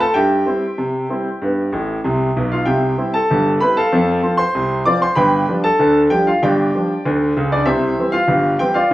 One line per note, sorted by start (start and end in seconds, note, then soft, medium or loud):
0.00 0.15 A4 medium
0.00 0.16 A5 medium
0.14 0.42 G2 medium
0.14 2.00 G4 medium
0.14 2.00 E5 soft
0.14 1.66 G5 medium
0.46 0.63 G3 soft
0.46 0.64 C4 soft
0.46 0.64 E4 soft
0.78 1.05 C3 medium
1.09 1.27 G3 soft
1.09 1.28 C4 soft
1.09 1.28 E4 soft
1.42 1.68 G2 medium
1.42 1.60 B3 soft
1.72 1.96 A1 medium
1.72 1.96 A2 medium
2.04 2.29 C2 medium
2.04 2.28 C3 medium
2.36 2.60 B1 medium
2.36 2.60 B2 medium
2.52 2.67 F4 soft
2.52 2.67 F5 medium
2.66 2.93 C2 medium
2.66 2.94 C3 medium
2.66 3.11 G4 soft
2.66 3.11 E5 soft
2.66 3.11 G5 medium
2.98 3.15 G3 soft
2.98 3.16 C4 soft
2.98 3.16 E4 soft
3.14 3.58 A4 medium
3.14 3.51 A5 medium
3.30 3.57 G1 medium
3.30 3.57 G2 medium
3.61 3.78 G3 soft
3.61 3.79 C4 soft
3.61 3.79 E4 soft
3.61 3.76 B4 medium
3.61 3.76 B5 medium
3.77 4.36 A4 medium
3.77 4.36 F5 medium
3.77 4.36 A5 medium
3.92 4.19 F2 medium
3.92 4.19 F3 medium
4.23 4.40 F3 soft
4.23 4.40 C4 soft
4.23 4.41 F4 soft
4.37 4.83 C5 medium
4.37 4.83 C6 medium
4.55 4.81 C2 medium
4.55 4.81 C3 medium
4.85 5.03 F3 soft
4.85 5.03 C4 soft
4.85 5.04 F4 soft
4.85 5.01 D5 medium
4.85 5.01 D6 medium
5.02 5.17 C5 medium
5.02 5.17 C6 medium
5.15 5.43 G1 medium
5.15 5.43 G2 medium
5.15 5.60 B4 medium
5.15 5.61 G5 medium
5.15 5.54 B5 medium
5.48 5.66 F3 soft
5.48 5.66 G3 soft
5.48 5.66 D4 soft
5.64 6.08 A4 medium
5.64 6.01 A5 medium
5.79 6.06 D2 medium
5.79 6.06 D3 medium
6.10 6.28 F3 soft
6.10 6.28 G3 soft
6.10 6.28 D4 soft
6.10 6.26 G4 medium
6.10 6.26 G5 medium
6.27 6.42 F4 soft
6.27 6.42 F5 medium
6.43 6.69 G1 medium
6.43 6.69 G2 medium
6.43 7.16 G4 medium
6.43 7.17 D5 soft
6.43 7.05 G5 medium
6.75 6.92 F3 soft
6.75 6.92 G3 soft
6.75 6.92 D4 soft
7.05 7.31 D2 medium
7.05 7.31 D3 medium
7.37 7.61 C#2 medium
7.37 7.61 C#3 medium
7.52 7.67 D4 medium
7.52 7.67 D5 medium
7.66 7.92 C2 medium
7.66 7.93 C3 medium
7.66 8.10 E4 medium
7.66 8.10 C5 medium
7.66 8.10 E5 medium
7.98 8.15 E3 soft
7.98 8.16 G3 soft
7.98 8.16 C4 soft
8.12 8.57 F4 medium
8.12 8.57 F5 medium
8.28 8.55 G1 medium
8.28 8.55 G2 medium
8.59 8.77 E3 soft
8.59 8.77 G3 soft
8.59 8.77 C4 soft
8.59 8.75 G4 medium
8.59 8.75 G5 medium
8.74 8.94 F4 medium
8.74 8.94 D5 medium
8.74 8.94 F5 medium